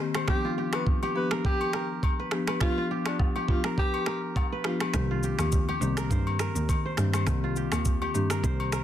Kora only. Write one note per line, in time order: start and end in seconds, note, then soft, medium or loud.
0.00 0.11 G4 medium
0.00 0.69 A#4 medium
0.00 0.15 C5 medium
0.16 1.34 C5 medium
0.45 1.96 F4 medium
0.58 1.03 G4 medium
1.03 2.44 G4 medium
1.32 1.51 A#4 medium
1.45 1.80 B4 medium
1.74 2.25 A#4 medium
2.19 2.48 B4 medium
2.49 3.71 B4 medium
2.78 4.29 F4 medium
2.91 3.36 G4 medium
3.36 4.77 G4 medium
3.65 3.84 A#4 medium
3.78 4.13 B4 medium
4.07 4.58 A#4 medium
4.52 4.81 B4 medium
4.82 6.04 B4 medium
5.11 6.62 F4 medium
5.24 5.69 G4 medium
5.69 7.10 G4 medium
5.98 6.40 A#4 medium
6.11 6.85 C5 medium
6.40 7.68 A#4 medium
6.85 7.14 C5 medium
7.15 8.33 C5 medium
7.44 8.84 F4 medium
7.57 8.02 G4 medium
8.02 8.84 G4 medium
8.31 8.73 A#4 medium
8.44 8.84 C5 medium
8.73 8.84 A#4 medium